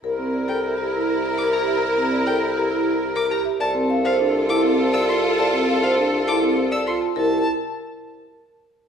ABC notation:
X:1
M:3/4
L:1/16
Q:1/4=101
K:Cmix
V:1 name="Violin"
z3 g z4 z d' b z | z3 g z4 z d' b z | a z2 f z2 d' z2 e' c' z | a z2 f z2 d' z2 e' c' z |
a2 z8 z2 |]
V:2 name="Marimba"
B z d A z G z3 B z e | B z d A z G z3 B z e | d z f c z A a z c d z a | d z f c z A a z c d z a |
B2 z8 z2 |]
V:3 name="Oboe"
B12- | B8- B3 z | A12- | A8- A3 z |
z12 |]
V:4 name="String section"
[EB]12- | [EB]8- [EB]3 z | [FA]12- | [FA]8- [FA]3 z |
z12 |]
V:5 name="Vibraphone"
z C z B z2 E z3 G z | z C z B z2 E z3 G z | z C z c D z E C z2 F z | z C z c D z E C z2 F z |
E2 z8 z2 |]
V:6 name="Bassoon" clef=bass
C,,12- | C,,12 | C,,12- | C,,12 |
C,,2 z8 z2 |]